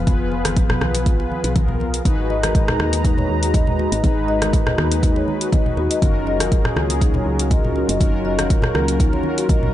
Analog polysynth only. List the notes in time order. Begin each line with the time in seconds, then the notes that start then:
0.07 B3 F4 G#4 B4
1.56 B3 F4 G#4 A#4
2.05 D#4 F#4 G#4 B4
3.54 D#4 F#4 G#4 B4
4.04 D#4 F#4 G#4 B4
5.53 D#4 F#4 G#4 B4
6.02 C#4 F4 F#4 A#4
7.51 C#4 F4 F#4 A#4
8.00 C#4 F4 F#4 A#4
9.49 C#4 F4 F#4 A#4